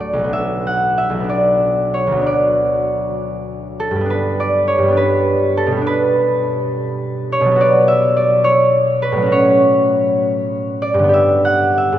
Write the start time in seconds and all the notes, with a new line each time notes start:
Already playing: D2 A2 F#3 A4
0.00 A3 D5
0.13 B1
0.19 F#3
0.24 B3
0.29 D4
0.33 E5
0.67 F#5
0.98 E5
1.10 B1
1.14 F#3
1.20 B3
1.24 D4
1.29 D5
1.94 C#5
2.07 D2
2.12 F#3
2.17 B3
2.22 D4
2.27 D5
3.80 A4
3.91 G2
3.95 G3
4.01 B3
4.06 D4
4.10 B4
4.40 D5
4.68 C#5
4.78 G2
4.83 G3
4.88 B3
4.92 D4
4.97 B4
5.57 A4
5.66 B2
5.71 G3
5.77 B3
5.81 D4
5.87 B4
7.32 C#5
7.41 B2
7.46 F#3
7.51 B3
7.56 F#4
7.61 D5
7.88 E5
8.17 D5
8.44 C#5
9.02 B4
9.12 A2
9.17 F#3
9.22 C#4
9.26 F#4
9.32 C#5
10.82 D5
10.94 G2
10.99 D3
11.03 B3
11.09 G4
11.14 E5
11.45 F#5
11.78 E5
11.92 G#2